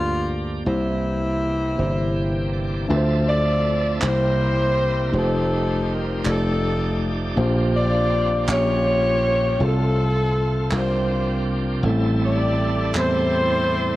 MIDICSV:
0, 0, Header, 1, 7, 480
1, 0, Start_track
1, 0, Key_signature, -1, "major"
1, 0, Tempo, 744417
1, 428, Time_signature, 6, 3, 24, 8
1, 9002, End_track
2, 0, Start_track
2, 0, Title_t, "Saxophone section"
2, 0, Program_c, 0, 65
2, 2118, Note_on_c, 0, 65, 74
2, 2120, Note_on_c, 0, 69, 77
2, 2121, Note_on_c, 0, 74, 114
2, 2570, Note_off_c, 0, 65, 0
2, 2570, Note_off_c, 0, 69, 0
2, 2571, Note_off_c, 0, 74, 0
2, 2605, Note_on_c, 0, 67, 77
2, 2606, Note_on_c, 0, 64, 87
2, 2611, Note_on_c, 0, 72, 110
2, 3293, Note_off_c, 0, 64, 0
2, 3293, Note_off_c, 0, 67, 0
2, 3296, Note_off_c, 0, 72, 0
2, 3329, Note_on_c, 0, 60, 64
2, 3331, Note_on_c, 0, 63, 72
2, 3337, Note_on_c, 0, 69, 85
2, 3804, Note_off_c, 0, 69, 0
2, 3814, Note_on_c, 0, 70, 93
2, 4015, Note_off_c, 0, 60, 0
2, 4015, Note_off_c, 0, 63, 0
2, 4043, Note_off_c, 0, 70, 0
2, 4054, Note_on_c, 0, 60, 60
2, 4057, Note_on_c, 0, 63, 64
2, 4060, Note_on_c, 0, 69, 93
2, 4586, Note_off_c, 0, 69, 0
2, 4737, Note_off_c, 0, 60, 0
2, 4738, Note_off_c, 0, 63, 0
2, 5006, Note_on_c, 0, 67, 84
2, 5009, Note_on_c, 0, 74, 108
2, 5012, Note_on_c, 0, 65, 80
2, 5453, Note_off_c, 0, 67, 0
2, 5454, Note_off_c, 0, 74, 0
2, 5455, Note_off_c, 0, 65, 0
2, 5494, Note_on_c, 0, 67, 87
2, 5496, Note_on_c, 0, 65, 88
2, 5500, Note_on_c, 0, 73, 115
2, 6176, Note_off_c, 0, 67, 0
2, 6177, Note_off_c, 0, 65, 0
2, 6202, Note_on_c, 0, 60, 68
2, 6203, Note_on_c, 0, 65, 65
2, 6205, Note_off_c, 0, 73, 0
2, 6210, Note_on_c, 0, 69, 100
2, 6890, Note_off_c, 0, 60, 0
2, 6891, Note_off_c, 0, 65, 0
2, 6920, Note_off_c, 0, 69, 0
2, 6931, Note_on_c, 0, 65, 65
2, 6933, Note_on_c, 0, 67, 64
2, 6939, Note_on_c, 0, 72, 83
2, 7465, Note_off_c, 0, 72, 0
2, 7615, Note_off_c, 0, 65, 0
2, 7615, Note_off_c, 0, 67, 0
2, 7892, Note_on_c, 0, 67, 75
2, 7900, Note_on_c, 0, 74, 103
2, 8340, Note_off_c, 0, 74, 0
2, 8360, Note_off_c, 0, 67, 0
2, 8367, Note_on_c, 0, 64, 83
2, 8368, Note_on_c, 0, 67, 80
2, 8376, Note_on_c, 0, 72, 117
2, 9002, Note_off_c, 0, 64, 0
2, 9002, Note_off_c, 0, 67, 0
2, 9002, Note_off_c, 0, 72, 0
2, 9002, End_track
3, 0, Start_track
3, 0, Title_t, "Tenor saxophone"
3, 0, Program_c, 1, 66
3, 0, Note_on_c, 1, 65, 88
3, 266, Note_off_c, 1, 65, 0
3, 438, Note_on_c, 1, 64, 77
3, 1610, Note_off_c, 1, 64, 0
3, 9002, End_track
4, 0, Start_track
4, 0, Title_t, "Tine electric piano"
4, 0, Program_c, 2, 4
4, 0, Control_c, 2, 64, 127
4, 0, Note_on_c, 2, 43, 53
4, 0, Note_on_c, 2, 58, 58
4, 0, Note_on_c, 2, 65, 50
4, 0, Note_on_c, 2, 67, 52
4, 0, Note_on_c, 2, 74, 57
4, 340, Note_off_c, 2, 58, 0
4, 343, Note_off_c, 2, 65, 0
4, 346, Note_off_c, 2, 67, 0
4, 348, Note_off_c, 2, 74, 0
4, 414, Note_on_c, 2, 58, 63
4, 421, Note_on_c, 2, 64, 57
4, 423, Note_on_c, 2, 48, 53
4, 427, Note_on_c, 2, 67, 61
4, 429, Note_on_c, 2, 72, 69
4, 437, Control_c, 2, 64, 0
4, 443, Note_off_c, 2, 43, 0
4, 564, Control_c, 2, 64, 127
4, 1059, Note_off_c, 2, 58, 0
4, 1062, Note_off_c, 2, 64, 0
4, 1065, Note_off_c, 2, 67, 0
4, 1066, Note_off_c, 2, 72, 0
4, 1122, Note_off_c, 2, 48, 0
4, 1135, Note_on_c, 2, 58, 60
4, 1142, Note_on_c, 2, 62, 46
4, 1144, Note_on_c, 2, 67, 53
4, 1149, Note_on_c, 2, 72, 66
4, 1183, Note_on_c, 2, 64, 53
4, 1187, Note_off_c, 2, 62, 0
4, 1780, Note_off_c, 2, 58, 0
4, 1784, Note_off_c, 2, 67, 0
4, 1787, Note_off_c, 2, 72, 0
4, 1804, Note_off_c, 2, 64, 0
4, 1858, Note_on_c, 2, 57, 88
4, 1858, Note_on_c, 2, 62, 85
4, 1862, Note_on_c, 2, 50, 73
4, 1864, Note_on_c, 2, 76, 79
4, 1869, Note_on_c, 2, 65, 84
4, 1872, Note_on_c, 2, 71, 79
4, 1881, Control_c, 2, 64, 0
4, 1910, Note_on_c, 2, 72, 105
4, 1913, Note_off_c, 2, 71, 0
4, 1991, Control_c, 2, 64, 127
4, 2502, Note_off_c, 2, 57, 0
4, 2502, Note_off_c, 2, 62, 0
4, 2504, Note_off_c, 2, 76, 0
4, 2507, Note_off_c, 2, 65, 0
4, 2528, Note_off_c, 2, 72, 0
4, 2562, Note_off_c, 2, 50, 0
4, 2580, Note_on_c, 2, 58, 70
4, 2584, Note_on_c, 2, 60, 56
4, 2585, Note_on_c, 2, 63, 45
4, 2588, Note_on_c, 2, 48, 59
4, 2592, Note_on_c, 2, 67, 62
4, 2593, Note_on_c, 2, 72, 68
4, 2601, Control_c, 2, 64, 0
4, 2629, Note_on_c, 2, 64, 59
4, 2630, Note_off_c, 2, 63, 0
4, 2701, Control_c, 2, 64, 127
4, 3223, Note_off_c, 2, 58, 0
4, 3225, Note_off_c, 2, 60, 0
4, 3228, Note_off_c, 2, 67, 0
4, 3229, Note_off_c, 2, 72, 0
4, 3247, Note_off_c, 2, 64, 0
4, 3284, Note_off_c, 2, 48, 0
4, 3302, Note_on_c, 2, 57, 79
4, 3305, Note_on_c, 2, 63, 76
4, 3308, Note_on_c, 2, 65, 72
4, 3312, Note_on_c, 2, 67, 72
4, 3317, Note_on_c, 2, 72, 78
4, 3321, Control_c, 2, 64, 0
4, 3417, Control_c, 2, 64, 127
4, 3943, Note_off_c, 2, 57, 0
4, 3945, Note_off_c, 2, 63, 0
4, 3946, Note_off_c, 2, 65, 0
4, 3948, Note_off_c, 2, 67, 0
4, 3951, Note_off_c, 2, 72, 0
4, 4021, Note_on_c, 2, 57, 69
4, 4025, Note_on_c, 2, 63, 60
4, 4031, Note_on_c, 2, 65, 64
4, 4032, Note_on_c, 2, 67, 60
4, 4034, Note_on_c, 2, 74, 73
4, 4041, Control_c, 2, 64, 0
4, 4171, Control_c, 2, 64, 127
4, 4663, Note_off_c, 2, 57, 0
4, 4664, Note_off_c, 2, 63, 0
4, 4667, Note_off_c, 2, 65, 0
4, 4668, Note_off_c, 2, 67, 0
4, 4669, Note_off_c, 2, 74, 0
4, 4745, Note_on_c, 2, 58, 102
4, 4748, Note_on_c, 2, 62, 84
4, 4750, Note_on_c, 2, 46, 75
4, 4752, Note_on_c, 2, 65, 81
4, 4756, Note_on_c, 2, 67, 90
4, 4756, Note_on_c, 2, 72, 106
4, 4759, Control_c, 2, 64, 0
4, 4870, Control_c, 2, 64, 127
4, 5384, Note_off_c, 2, 58, 0
4, 5385, Note_off_c, 2, 62, 0
4, 5388, Note_off_c, 2, 65, 0
4, 5390, Note_off_c, 2, 67, 0
4, 5390, Note_off_c, 2, 72, 0
4, 5445, Note_off_c, 2, 46, 0
4, 5473, Note_on_c, 2, 58, 64
4, 5475, Note_on_c, 2, 61, 63
4, 5478, Note_on_c, 2, 65, 58
4, 5479, Note_on_c, 2, 46, 61
4, 5480, Control_c, 2, 64, 0
4, 5484, Note_on_c, 2, 67, 57
4, 5487, Note_on_c, 2, 73, 74
4, 5603, Control_c, 2, 64, 127
4, 6108, Note_off_c, 2, 58, 0
4, 6109, Note_off_c, 2, 61, 0
4, 6111, Note_off_c, 2, 65, 0
4, 6114, Note_off_c, 2, 67, 0
4, 6115, Note_off_c, 2, 73, 0
4, 6169, Note_off_c, 2, 46, 0
4, 6185, Note_on_c, 2, 60, 80
4, 6191, Note_on_c, 2, 48, 63
4, 6192, Note_on_c, 2, 65, 72
4, 6198, Note_on_c, 2, 68, 67
4, 6199, Control_c, 2, 64, 0
4, 6235, Note_off_c, 2, 68, 0
4, 6242, Note_on_c, 2, 69, 84
4, 6323, Control_c, 2, 64, 127
4, 6824, Note_off_c, 2, 60, 0
4, 6827, Note_off_c, 2, 65, 0
4, 6852, Note_off_c, 2, 69, 0
4, 6885, Note_off_c, 2, 48, 0
4, 6904, Note_on_c, 2, 55, 59
4, 6912, Note_on_c, 2, 60, 57
4, 6914, Note_on_c, 2, 48, 59
4, 6914, Note_on_c, 2, 62, 57
4, 6918, Note_on_c, 2, 65, 62
4, 6919, Control_c, 2, 64, 0
4, 6919, Note_on_c, 2, 70, 71
4, 7039, Control_c, 2, 64, 127
4, 7543, Note_off_c, 2, 55, 0
4, 7547, Note_off_c, 2, 60, 0
4, 7548, Note_off_c, 2, 62, 0
4, 7550, Note_off_c, 2, 65, 0
4, 7551, Note_off_c, 2, 70, 0
4, 7606, Note_off_c, 2, 48, 0
4, 7630, Note_on_c, 2, 55, 83
4, 7636, Note_on_c, 2, 57, 75
4, 7637, Note_on_c, 2, 45, 68
4, 7639, Control_c, 2, 64, 0
4, 7640, Note_on_c, 2, 60, 81
4, 7643, Note_on_c, 2, 64, 83
4, 7645, Note_on_c, 2, 69, 99
4, 7732, Control_c, 2, 64, 127
4, 8266, Note_off_c, 2, 55, 0
4, 8269, Note_off_c, 2, 57, 0
4, 8271, Note_off_c, 2, 60, 0
4, 8273, Note_off_c, 2, 64, 0
4, 8274, Note_off_c, 2, 69, 0
4, 8328, Note_off_c, 2, 45, 0
4, 8351, Note_on_c, 2, 55, 66
4, 8352, Note_on_c, 2, 57, 55
4, 8355, Note_on_c, 2, 60, 60
4, 8362, Note_on_c, 2, 64, 60
4, 8363, Note_on_c, 2, 72, 68
4, 8987, Note_off_c, 2, 55, 0
4, 8988, Note_off_c, 2, 57, 0
4, 8989, Note_off_c, 2, 60, 0
4, 8993, Note_off_c, 2, 64, 0
4, 8993, Note_off_c, 2, 72, 0
4, 9002, End_track
5, 0, Start_track
5, 0, Title_t, "Tonewheel organ"
5, 0, Program_c, 3, 16
5, 0, Note_on_c, 3, 53, 53
5, 0, Note_on_c, 3, 58, 52
5, 0, Note_on_c, 3, 62, 48
5, 0, Note_on_c, 3, 67, 60
5, 407, Note_off_c, 3, 53, 0
5, 408, Note_off_c, 3, 58, 0
5, 408, Note_off_c, 3, 67, 0
5, 410, Note_off_c, 3, 62, 0
5, 429, Note_on_c, 3, 58, 50
5, 430, Note_on_c, 3, 51, 41
5, 432, Note_on_c, 3, 60, 54
5, 434, Note_on_c, 3, 67, 59
5, 471, Note_off_c, 3, 51, 0
5, 476, Note_on_c, 3, 52, 50
5, 1393, Note_on_c, 3, 79, 61
5, 1615, Note_off_c, 3, 79, 0
5, 1633, Note_on_c, 3, 74, 54
5, 1846, Note_off_c, 3, 58, 0
5, 1847, Note_off_c, 3, 60, 0
5, 1848, Note_off_c, 3, 67, 0
5, 1855, Note_off_c, 3, 74, 0
5, 1867, Note_on_c, 3, 69, 83
5, 1868, Note_on_c, 3, 62, 66
5, 1869, Note_off_c, 3, 52, 0
5, 1870, Note_on_c, 3, 60, 67
5, 1872, Note_on_c, 3, 53, 74
5, 1874, Note_on_c, 3, 76, 67
5, 2590, Note_off_c, 3, 62, 0
5, 2590, Note_off_c, 3, 69, 0
5, 2591, Note_off_c, 3, 60, 0
5, 2593, Note_off_c, 3, 53, 0
5, 2593, Note_off_c, 3, 76, 0
5, 2600, Note_on_c, 3, 58, 58
5, 2600, Note_on_c, 3, 70, 68
5, 2601, Note_on_c, 3, 64, 55
5, 2602, Note_on_c, 3, 55, 61
5, 2602, Note_on_c, 3, 60, 54
5, 3314, Note_off_c, 3, 60, 0
5, 3316, Note_off_c, 3, 58, 0
5, 3316, Note_off_c, 3, 70, 0
5, 3317, Note_off_c, 3, 55, 0
5, 3317, Note_off_c, 3, 64, 0
5, 3321, Note_on_c, 3, 67, 74
5, 3322, Note_on_c, 3, 60, 61
5, 3323, Note_on_c, 3, 53, 61
5, 3323, Note_on_c, 3, 63, 58
5, 3327, Note_on_c, 3, 55, 62
5, 4026, Note_off_c, 3, 63, 0
5, 4028, Note_off_c, 3, 53, 0
5, 4031, Note_off_c, 3, 67, 0
5, 4034, Note_on_c, 3, 63, 60
5, 4034, Note_on_c, 3, 74, 63
5, 4036, Note_on_c, 3, 53, 70
5, 4037, Note_off_c, 3, 60, 0
5, 4038, Note_on_c, 3, 57, 58
5, 4038, Note_on_c, 3, 67, 73
5, 4039, Note_off_c, 3, 55, 0
5, 4740, Note_off_c, 3, 67, 0
5, 4743, Note_off_c, 3, 53, 0
5, 4747, Note_on_c, 3, 67, 91
5, 4748, Note_on_c, 3, 58, 74
5, 4748, Note_on_c, 3, 62, 73
5, 4751, Note_on_c, 3, 53, 80
5, 4751, Note_on_c, 3, 60, 68
5, 4753, Note_off_c, 3, 63, 0
5, 4753, Note_off_c, 3, 74, 0
5, 4755, Note_off_c, 3, 57, 0
5, 5462, Note_off_c, 3, 58, 0
5, 5462, Note_off_c, 3, 67, 0
5, 5467, Note_off_c, 3, 53, 0
5, 5469, Note_off_c, 3, 62, 0
5, 5469, Note_on_c, 3, 55, 57
5, 5470, Note_on_c, 3, 58, 64
5, 5470, Note_on_c, 3, 61, 55
5, 5470, Note_on_c, 3, 67, 71
5, 5471, Note_off_c, 3, 60, 0
5, 5474, Note_on_c, 3, 53, 69
5, 6189, Note_off_c, 3, 55, 0
5, 6190, Note_off_c, 3, 58, 0
5, 6190, Note_off_c, 3, 61, 0
5, 6190, Note_off_c, 3, 67, 0
5, 6192, Note_off_c, 3, 53, 0
5, 6193, Note_on_c, 3, 65, 67
5, 6194, Note_on_c, 3, 57, 61
5, 6198, Note_on_c, 3, 60, 58
5, 6904, Note_off_c, 3, 60, 0
5, 6908, Note_on_c, 3, 58, 59
5, 6909, Note_on_c, 3, 67, 67
5, 6910, Note_on_c, 3, 53, 63
5, 6911, Note_on_c, 3, 60, 55
5, 6912, Note_off_c, 3, 57, 0
5, 6912, Note_off_c, 3, 65, 0
5, 6912, Note_on_c, 3, 62, 54
5, 7619, Note_off_c, 3, 60, 0
5, 7625, Note_on_c, 3, 57, 65
5, 7627, Note_on_c, 3, 60, 72
5, 7627, Note_on_c, 3, 64, 66
5, 7629, Note_off_c, 3, 58, 0
5, 7629, Note_off_c, 3, 67, 0
5, 7630, Note_off_c, 3, 53, 0
5, 7630, Note_on_c, 3, 68, 68
5, 7631, Note_off_c, 3, 62, 0
5, 7633, Note_on_c, 3, 55, 69
5, 7669, Note_on_c, 3, 69, 86
5, 7671, Note_off_c, 3, 68, 0
5, 9002, Note_off_c, 3, 55, 0
5, 9002, Note_off_c, 3, 57, 0
5, 9002, Note_off_c, 3, 60, 0
5, 9002, Note_off_c, 3, 64, 0
5, 9002, Note_off_c, 3, 69, 0
5, 9002, End_track
6, 0, Start_track
6, 0, Title_t, "Slap bass"
6, 0, Program_c, 4, 36
6, 0, Note_on_c, 4, 38, 78
6, 400, Note_off_c, 4, 38, 0
6, 426, Note_on_c, 4, 36, 90
6, 1123, Note_off_c, 4, 36, 0
6, 1151, Note_on_c, 4, 31, 72
6, 1846, Note_off_c, 4, 31, 0
6, 1871, Note_on_c, 4, 38, 94
6, 2566, Note_off_c, 4, 38, 0
6, 2594, Note_on_c, 4, 36, 90
6, 3287, Note_off_c, 4, 36, 0
6, 3311, Note_on_c, 4, 29, 97
6, 4005, Note_off_c, 4, 29, 0
6, 4034, Note_on_c, 4, 29, 96
6, 4727, Note_off_c, 4, 29, 0
6, 4752, Note_on_c, 4, 34, 99
6, 5445, Note_off_c, 4, 34, 0
6, 5469, Note_on_c, 4, 34, 96
6, 6164, Note_off_c, 4, 34, 0
6, 6191, Note_on_c, 4, 36, 101
6, 6885, Note_off_c, 4, 36, 0
6, 6909, Note_on_c, 4, 36, 96
6, 7604, Note_off_c, 4, 36, 0
6, 7627, Note_on_c, 4, 33, 97
6, 8323, Note_off_c, 4, 33, 0
6, 8349, Note_on_c, 4, 40, 89
6, 9002, Note_off_c, 4, 40, 0
6, 9002, End_track
7, 0, Start_track
7, 0, Title_t, "Drums"
7, 2589, Note_on_c, 9, 39, 110
7, 2653, Note_off_c, 9, 39, 0
7, 4031, Note_on_c, 9, 39, 104
7, 4095, Note_off_c, 9, 39, 0
7, 5471, Note_on_c, 9, 39, 108
7, 5536, Note_off_c, 9, 39, 0
7, 6906, Note_on_c, 9, 39, 110
7, 6970, Note_off_c, 9, 39, 0
7, 8348, Note_on_c, 9, 39, 97
7, 8413, Note_off_c, 9, 39, 0
7, 9002, End_track
0, 0, End_of_file